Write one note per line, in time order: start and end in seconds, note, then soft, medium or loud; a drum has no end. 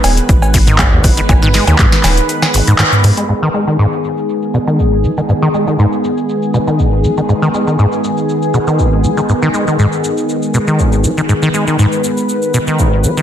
0.00 3.25 D#3 medium
0.00 3.25 G#3 medium
0.00 3.25 B3 medium
0.00 3.28 B4 medium
0.00 open hi-hat medium
0.00 cowbell medium
0.00 cabasa medium
0.04 0.20 D#1 loud
0.17 closed hi-hat medium
0.17 cabasa soft
0.29 0.84 G#1 medium
0.29 kick loud
0.29 closed hi-hat medium
0.29 cabasa medium
0.42 cowbell soft
0.42 cabasa soft
0.54 0.58 B2 medium
0.54 kick medium
0.54 open hi-hat loud
0.54 cabasa medium
0.67 0.80 D#3 medium
0.67 closed hi-hat medium
0.67 mid tom medium
0.67 cabasa soft
0.79 1.06 G#1 medium
0.79 kick loud
0.79 clap loud
0.79 closed hi-hat medium
0.79 cowbell medium
0.79 cabasa soft
0.92 0.99 D#2 medium
1.04 1.20 G#1 medium
1.04 1.11 G#3 medium
1.04 kick medium
1.04 open hi-hat medium
1.04 cabasa medium
1.17 1.21 D#3 medium
1.17 closed hi-hat medium
1.17 cabasa soft
1.29 1.59 G#1 loud
1.29 1.33 G#2 medium
1.29 kick loud
1.29 closed hi-hat medium
1.29 cowbell medium
1.29 cabasa soft
1.42 1.49 D#3 loud
1.42 mid tom medium
1.42 cabasa soft
1.54 1.65 G#3 medium
1.54 snare medium
1.54 open hi-hat medium
1.54 cabasa medium
1.67 1.74 D#2 loud
1.67 1.77 D#3 medium
1.67 closed hi-hat medium
1.67 cowbell soft
1.67 cabasa soft
1.79 1.86 G#2 loud
1.79 kick loud
1.79 clap loud
1.79 closed hi-hat medium
1.79 cabasa soft
1.92 snare medium
1.92 cabasa soft
2.04 2.20 D#1 loud
2.04 snare medium
2.04 clap soft
2.04 open hi-hat medium
2.04 cowbell medium
2.04 cabasa medium
2.17 closed hi-hat medium
2.17 cabasa soft
2.29 closed hi-hat medium
2.29 cabasa soft
2.42 snare medium
2.42 cowbell soft
2.42 cabasa soft
2.54 2.61 G#1 medium
2.54 open hi-hat loud
2.54 cabasa medium
2.67 2.74 G#2 loud
2.67 closed hi-hat medium
2.67 cabasa soft
2.79 2.83 G#2 medium
2.79 snare medium
2.79 clap loud
2.79 closed hi-hat medium
2.79 cowbell medium
2.79 cabasa soft
2.92 mid tom medium
2.92 cabasa soft
3.04 3.12 G#2 medium
3.04 3.11 G#2 medium
3.04 open hi-hat medium
3.04 cabasa medium
3.17 3.24 G#3 medium
3.17 closed hi-hat medium
3.17 cabasa soft
3.29 3.33 G#2 medium
3.29 13.22 D#3 medium
3.29 13.22 G#3 medium
3.29 13.22 B3 medium
3.29 11.28 G#4 medium
3.29 cabasa soft
3.42 3.49 D#3 loud
3.42 cabasa soft
3.54 3.65 G#3 medium
3.54 cabasa medium
3.67 3.77 D#3 medium
3.67 cabasa soft
3.79 3.86 G#2 loud
3.79 cabasa soft
3.92 cabasa soft
4.04 cabasa medium
4.17 cabasa soft
4.29 cabasa soft
4.42 cabasa soft
4.54 4.58 B2 medium
4.54 cabasa medium
4.67 4.81 D#3 medium
4.67 cabasa soft
4.79 5.06 G#1 medium
4.79 cabasa soft
5.04 5.11 G#3 medium
5.04 cabasa medium
5.17 5.21 D#3 medium
5.17 cabasa soft
5.29 5.33 G#2 medium
5.29 cabasa soft
5.42 5.49 D#3 loud
5.42 cabasa soft
5.54 5.65 G#3 medium
5.54 cabasa medium
5.67 5.77 D#3 medium
5.67 cabasa soft
5.79 5.86 G#2 loud
5.79 cabasa soft
5.92 cabasa soft
6.04 cabasa medium
6.17 cabasa soft
6.29 cabasa soft
6.42 cabasa soft
6.54 6.58 B2 medium
6.54 cabasa medium
6.67 6.81 D#3 medium
6.67 cabasa soft
6.79 7.06 G#1 medium
6.79 cabasa soft
7.04 7.11 G#3 medium
7.04 cabasa medium
7.17 7.21 D#3 medium
7.17 cabasa soft
7.29 7.33 G#2 medium
7.29 cabasa soft
7.42 7.49 D#3 loud
7.42 cabasa soft
7.54 7.65 G#3 medium
7.54 cabasa medium
7.67 7.77 D#3 medium
7.67 cabasa soft
7.79 7.86 G#2 loud
7.79 cabasa soft
7.92 cabasa soft
8.04 cabasa medium
8.17 cabasa soft
8.29 cabasa soft
8.42 cabasa soft
8.54 8.58 B2 medium
8.54 cabasa medium
8.67 8.81 D#3 medium
8.67 cabasa soft
8.79 9.06 G#1 medium
8.79 cabasa soft
9.04 9.11 G#3 medium
9.04 cabasa medium
9.17 9.21 D#3 medium
9.17 cabasa soft
9.29 9.33 G#2 medium
9.29 cabasa soft
9.42 9.49 D#3 loud
9.42 cabasa soft
9.54 9.65 G#3 medium
9.54 cabasa medium
9.67 9.77 D#3 medium
9.67 cabasa soft
9.79 9.86 G#2 loud
9.79 cabasa soft
9.92 cabasa soft
10.04 cabasa medium
10.17 cabasa soft
10.29 cabasa soft
10.42 cabasa soft
10.54 10.58 B2 medium
10.54 cabasa medium
10.67 10.81 D#3 medium
10.67 cabasa soft
10.79 11.06 G#1 medium
10.79 cabasa soft
10.92 cabasa soft
11.04 11.11 G#3 medium
11.04 cabasa medium
11.17 11.21 D#3 medium
11.17 cabasa soft
11.29 11.33 G#2 medium
11.29 13.22 B4 medium
11.29 cabasa soft
11.42 11.49 D#3 loud
11.42 cabasa soft
11.54 11.65 G#3 medium
11.54 cabasa medium
11.67 11.77 D#3 medium
11.67 cabasa soft
11.79 11.86 G#2 loud
11.79 cabasa soft
11.92 cabasa soft
12.04 cabasa medium
12.17 cabasa soft
12.29 cabasa soft
12.42 cabasa soft
12.54 12.58 B2 medium
12.54 cabasa medium
12.67 12.81 D#3 medium
12.67 cabasa soft
12.79 13.06 G#1 medium
12.79 cabasa soft
13.04 13.11 G#3 medium
13.04 cabasa medium
13.17 13.21 D#3 medium
13.17 cabasa soft